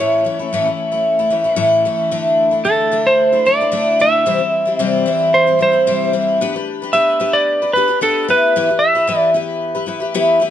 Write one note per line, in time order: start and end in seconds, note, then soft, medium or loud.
0.00 0.26 A2 medium
0.00 0.23 E3 medium
0.00 0.25 A3 medium
0.00 0.25 C#4 medium
0.00 0.25 E4 medium
0.00 1.56 C#5 medium
0.25 0.39 E3 medium
0.25 0.40 A3 medium
0.25 0.39 C#4 medium
0.25 0.38 E4 medium
0.39 0.52 A3 medium
0.39 0.53 C#4 medium
0.39 0.53 E4 medium
0.53 0.66 A2 medium
0.53 0.67 E3 medium
0.53 0.67 A3 loud
0.53 0.66 C#4 medium
0.53 0.64 E4 medium
0.66 0.93 A3 soft
0.66 0.91 C#4 medium
0.66 0.90 E4 medium
0.92 1.19 A3 medium
0.92 1.18 C#4 medium
0.92 1.18 E4 medium
1.19 1.30 A3 medium
1.19 1.30 C#4 medium
1.19 1.31 E4 medium
1.30 1.45 E3 medium
1.30 1.45 A3 medium
1.30 1.44 C#4 medium
1.30 1.43 E4 medium
1.44 1.56 A3 medium
1.44 1.55 C#4 medium
1.44 1.55 E4 medium
1.56 1.85 A2 loud
1.56 1.84 E3 loud
1.56 1.84 A3 medium
1.56 1.85 C#4 loud
1.56 1.85 E4 loud
1.85 2.11 E3 medium
1.85 2.10 A3 medium
1.85 2.12 C#4 medium
1.85 2.11 E4 medium
2.11 2.52 D3 loud
2.11 2.52 A3 medium
2.11 2.51 D4 medium
2.11 2.50 E4 medium
2.51 2.63 A3 soft
2.51 2.64 D4 medium
2.51 2.65 E4 medium
2.65 2.90 D3 medium
2.65 2.91 A3 medium
2.65 2.92 D4 medium
2.65 2.92 E4 medium
2.65 3.07 A4 medium
2.92 3.33 D3 medium
2.92 3.32 A3 medium
2.92 3.32 D4 medium
2.92 3.31 E4 medium
3.07 3.48 C5 medium
3.33 3.45 A3 medium
3.33 3.46 D4 medium
3.33 3.46 E4 medium
3.46 3.60 D3 medium
3.46 3.60 A3 medium
3.46 3.60 D4 medium
3.46 3.59 E4 medium
3.46 4.01 D5 loud
3.61 3.71 A3 soft
3.61 3.71 D4 soft
3.61 3.72 E4 medium
3.72 3.98 D3 medium
3.72 3.99 A3 medium
3.72 3.99 D4 loud
3.72 3.99 E4 loud
3.99 4.26 D3 medium
3.99 4.26 A3 medium
3.99 4.26 D4 medium
3.99 4.26 E4 medium
3.99 4.88 E5 loud
4.26 4.40 C3 medium
4.26 4.40 E3 medium
4.26 4.39 G3 medium
4.26 4.38 C4 medium
4.26 4.37 E4 medium
4.38 4.66 G3 soft
4.38 4.66 C4 soft
4.38 4.64 E4 medium
4.65 4.79 G3 medium
4.65 4.79 C4 medium
4.65 4.79 E4 medium
4.79 5.06 C3 loud
4.79 5.05 E3 medium
4.79 5.05 G3 medium
4.79 5.06 C4 medium
4.79 5.07 E4 loud
4.88 5.30 D5 loud
5.06 5.46 E3 medium
5.06 5.47 G3 medium
5.06 5.46 C4 medium
5.06 5.45 E4 medium
5.34 5.59 C5 medium
5.46 5.60 G3 soft
5.46 5.59 C4 medium
5.46 5.59 E4 medium
5.59 5.73 E3 medium
5.59 5.73 G3 medium
5.59 5.72 C4 medium
5.59 5.70 E4 medium
5.59 6.11 C5 medium
5.72 5.87 G3 soft
5.72 5.86 C4 medium
5.72 5.86 E4 medium
5.87 6.14 C3 medium
5.87 6.12 E3 medium
5.87 6.12 G3 medium
5.87 6.13 C4 medium
5.87 6.13 E4 loud
6.13 6.40 E3 medium
6.13 6.40 G3 medium
6.13 6.41 C4 medium
6.13 6.41 E4 medium
6.41 6.54 B3 medium
6.41 6.54 D4 medium
6.41 6.54 G4 loud
6.41 6.55 B4 loud
6.56 6.82 D4 soft
6.56 6.82 G4 medium
6.56 6.81 B4 medium
6.82 6.92 D4 medium
6.82 6.92 G4 medium
6.82 6.93 B4 medium
6.93 7.18 B3 medium
6.93 7.19 D4 medium
6.93 7.20 G4 medium
6.93 7.20 B4 loud
6.93 7.35 E5 medium
7.20 7.60 B3 medium
7.20 7.60 D4 medium
7.20 7.61 G4 medium
7.20 7.61 B4 medium
7.33 7.71 D5 medium
7.62 7.75 D4 soft
7.62 7.75 G4 medium
7.62 7.75 B4 medium
7.73 7.88 B3 medium
7.73 7.89 D4 medium
7.73 7.88 G4 medium
7.73 7.99 B4 medium
7.78 7.86 B4 medium
7.88 8.01 D4 soft
7.88 8.02 G4 medium
7.88 8.01 B4 medium
8.01 8.27 B3 medium
8.01 8.28 D4 loud
8.01 8.27 G4 medium
8.01 8.27 A4 medium
8.01 8.28 B4 medium
8.28 8.55 B3 medium
8.28 8.55 E4 medium
8.28 8.55 G4 medium
8.28 8.55 B4 medium
8.28 8.79 B4 loud
8.56 8.68 E3 medium
8.56 8.68 B3 medium
8.56 8.69 E4 medium
8.56 8.69 G4 medium
8.56 8.68 B4 medium
8.69 8.95 E4 soft
8.69 8.94 G4 soft
8.69 8.94 B4 medium
8.79 9.30 E5 medium
8.95 9.07 E4 soft
8.95 9.07 G4 medium
8.95 9.07 B4 medium
9.07 9.34 E3 medium
9.07 9.33 B3 medium
9.07 9.33 E4 medium
9.07 9.34 G4 medium
9.07 9.35 B4 medium
9.34 9.74 B3 medium
9.34 9.74 E4 medium
9.34 9.74 G4 medium
9.34 9.74 B4 medium
9.75 9.86 E4 medium
9.75 9.87 G4 medium
9.75 9.87 B4 medium
9.86 10.00 B3 medium
9.86 10.01 E4 medium
9.86 10.00 G4 medium
9.86 9.99 B4 medium
10.00 10.14 E4 medium
10.00 10.14 G4 medium
10.00 10.14 B4 medium
10.14 10.41 E3 loud
10.14 10.39 B3 loud
10.14 10.40 E4 loud
10.14 10.40 G4 loud
10.14 10.41 B4 loud
10.40 10.50 B3 medium
10.40 10.50 E4 medium
10.40 10.50 G4 medium
10.40 10.50 B4 medium